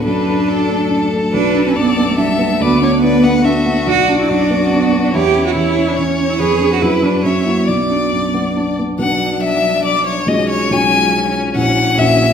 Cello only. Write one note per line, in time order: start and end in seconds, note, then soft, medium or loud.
0.05 1.10 D4 medium
1.33 1.63 D4 medium
1.67 1.71 C#4 medium
1.77 2.07 B3 medium
2.08 2.18 A3 medium
2.19 2.54 G3 medium
2.53 2.64 A3 medium
2.63 3.68 B3 medium
3.88 4.17 F#4 medium
4.21 4.31 E4 medium
4.30 4.61 D4 medium
4.64 4.72 C#4 medium
4.72 5.03 B3 medium
5.04 5.08 D4 medium
5.14 5.44 G4 medium
5.46 5.55 F#4 medium
5.55 5.89 E4 medium
5.88 5.99 D4 medium
5.97 6.31 C#4 medium
6.30 6.41 E4 medium
6.40 6.71 G#4 medium
6.73 6.83 F#4 medium
6.82 7.04 E4 medium
7.03 7.25 D4 medium
7.24 7.47 C#4 medium
7.46 7.68 A#3 soft
7.68 8.55 B3 medium
9.00 10.24 F#3 soft
10.28 11.53 F3 medium
11.56 12.33 E3 medium